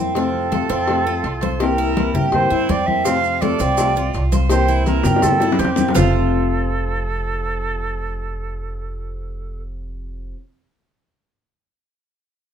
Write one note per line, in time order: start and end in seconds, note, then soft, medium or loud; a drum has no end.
0.00 0.64 F2 medium
0.00 0.15 A#3 soft
0.00 0.14 C4 medium
0.00 0.15 C4 medium
0.00 0.15 E4 medium
0.15 0.50 C3 medium
0.15 0.50 F3 medium
0.15 0.51 A3 medium
0.15 0.51 C4 medium
0.15 0.52 F4 medium
0.15 1.62 A4 loud
0.15 cowbell loud
0.15 high conga soft
0.35 high conga soft
0.51 0.69 C3 medium
0.51 0.69 F3 medium
0.51 0.69 A3 medium
0.51 0.69 C4 medium
0.51 0.68 F4 medium
0.51 0.69 A4 medium
0.51 cowbell medium
0.51 high conga loud
0.69 1.20 F2 medium
0.69 0.88 A3 soft
0.69 1.05 C4 medium
0.69 0.87 C4 soft
0.69 0.87 F4 medium
0.69 cowbell medium
0.69 high conga soft
0.88 1.05 C3 medium
0.88 1.06 F3 medium
0.88 1.06 A3 medium
0.88 1.06 C4 medium
0.88 1.05 F4 medium
0.88 cowbell loud
0.88 high conga soft
1.06 1.23 A3 soft
1.06 1.23 C4 soft
1.06 1.23 F4 soft
1.06 1.41 F4 medium
1.06 high conga soft
1.24 2.09 C2 medium
1.24 muted nylon-string guitar stroke medium
1.24 cowbell medium
1.24 high conga soft
1.41 1.60 A3 soft
1.41 1.60 C4 soft
1.41 1.59 F4 medium
1.41 1.60 C5 medium
1.41 cowbell medium
1.41 high conga medium
1.60 1.96 C3 medium
1.60 1.96 E3 medium
1.60 1.96 A#3 medium
1.60 1.96 C4 medium
1.60 1.97 E4 medium
1.60 1.78 G4 medium
1.60 2.32 A#4 loud
1.60 cowbell loud
1.60 high conga soft
1.78 2.14 E4 medium
1.78 high conga soft
1.97 2.14 C3 medium
1.97 2.14 E3 medium
1.97 2.14 A#3 medium
1.97 2.14 C4 medium
1.97 2.14 E4 medium
1.97 cowbell medium
1.97 high conga loud
2.14 2.48 G2 medium
2.14 2.33 A#3 soft
2.14 2.33 C4 soft
2.14 2.32 E4 medium
2.14 2.50 G4 medium
2.14 high conga soft
2.14 low conga medium
2.32 2.51 C3 medium
2.32 2.51 E3 medium
2.32 2.51 A#3 medium
2.32 2.51 C4 medium
2.32 2.50 E4 medium
2.32 2.72 C5 loud
2.32 cowbell loud
2.32 high conga soft
2.32 low conga medium
2.50 2.68 G2 medium
2.50 2.69 A#3 soft
2.50 2.69 C4 soft
2.50 2.68 E4 medium
2.50 high conga soft
2.69 3.54 F2 medium
2.69 3.04 C4 medium
2.69 2.88 D5 loud
2.69 muted nylon-string guitar stroke medium
2.69 cowbell medium
2.69 high conga medium
2.86 3.06 A#3 soft
2.86 3.05 C4 soft
2.86 3.05 E4 medium
2.86 3.06 E5 loud
2.86 high conga medium
3.05 3.41 C3 medium
3.05 3.41 F3 medium
3.05 3.42 A3 medium
3.05 3.41 C4 medium
3.05 3.42 C4 medium
3.05 3.42 F4 medium
3.05 3.43 F5 loud
3.05 cowbell loud
3.05 high conga soft
3.05 maracas medium
3.24 high conga soft
3.24 maracas soft
3.41 3.59 C3 medium
3.41 3.60 F3 medium
3.41 3.60 A3 medium
3.41 3.60 C4 medium
3.41 3.58 F4 medium
3.41 3.59 A4 medium
3.41 4.23 D5 loud
3.41 cowbell medium
3.41 high conga loud
3.41 maracas soft
3.59 4.10 C2 medium
3.59 3.78 A3 soft
3.59 3.95 C4 medium
3.59 3.78 C4 medium
3.59 3.77 F4 medium
3.59 cowbell medium
3.59 high conga soft
3.59 maracas medium
3.77 3.95 C3 medium
3.77 3.96 F3 medium
3.77 3.96 A3 medium
3.77 3.96 C4 medium
3.77 3.95 F4 medium
3.77 cowbell loud
3.77 high conga soft
3.77 maracas medium
3.96 4.13 A3 soft
3.96 4.14 C4 soft
3.96 4.13 F4 medium
3.96 4.32 F4 medium
3.96 high conga soft
3.96 maracas soft
4.14 4.99 C2 medium
4.14 muted nylon-string guitar stroke medium
4.14 cowbell medium
4.14 high conga soft
4.14 maracas soft
4.32 4.50 A3 soft
4.32 4.49 C4 soft
4.32 4.50 F4 medium
4.32 4.50 C5 medium
4.32 cowbell medium
4.32 high conga medium
4.32 maracas medium
4.49 4.85 C3 medium
4.49 4.85 E3 medium
4.49 4.86 A#3 medium
4.49 4.86 C4 medium
4.49 4.86 E4 medium
4.49 4.68 G4 medium
4.49 4.83 C5 loud
4.49 cowbell loud
4.49 high conga soft
4.49 maracas medium
4.68 5.04 E4 medium
4.68 high conga soft
4.68 maracas soft
4.86 5.04 C3 medium
4.86 5.04 E3 medium
4.86 5.04 A#3 medium
4.86 5.04 C4 medium
4.86 5.04 E4 medium
4.86 5.24 A#4 medium
4.86 cowbell medium
4.86 high conga loud
4.86 maracas soft
5.03 5.56 G2 medium
5.03 5.23 A#3 soft
5.03 5.23 C4 soft
5.03 5.23 E4 medium
5.03 5.41 G4 medium
5.03 high bongo loud
5.03 high conga soft
5.03 low conga medium
5.03 maracas medium
5.16 high bongo loud
5.22 5.41 C3 medium
5.22 5.41 E3 medium
5.22 5.41 A#3 medium
5.22 5.41 C4 medium
5.22 5.41 E4 medium
5.22 5.61 A4 medium
5.22 cowbell loud
5.22 high conga soft
5.22 low conga medium
5.22 maracas medium
5.29 high bongo medium
5.40 5.59 A#3 soft
5.40 5.59 C4 soft
5.40 5.59 E4 medium
5.40 5.59 E4 soft
5.40 high bongo medium
5.40 high conga soft
5.40 maracas soft
5.52 low bongo loud
5.59 5.91 F2 medium
5.59 5.95 C4 medium
5.59 5.95 G4 medium
5.59 muted nylon-string guitar stroke medium
5.59 cowbell medium
5.59 high conga medium
5.59 maracas soft
5.65 low bongo medium
5.76 5.96 A#3 soft
5.76 5.96 C4 soft
5.76 5.95 E4 medium
5.76 low bongo medium
5.76 high conga medium
5.76 maracas medium
5.88 low bongo loud
5.95 10.32 F1 loud
5.95 10.36 F2 medium
5.95 10.36 C3 medium
5.95 10.37 F3 medium
5.95 10.37 A3 medium
5.95 10.37 C4 medium
5.95 10.32 F4 medium
5.95 10.37 F4 medium
5.95 9.62 A4 medium
5.95 10.32 C5 medium
5.95 10.32 F5 medium
5.95 low bongo loud
5.95 low conga loud
5.95 maracas loud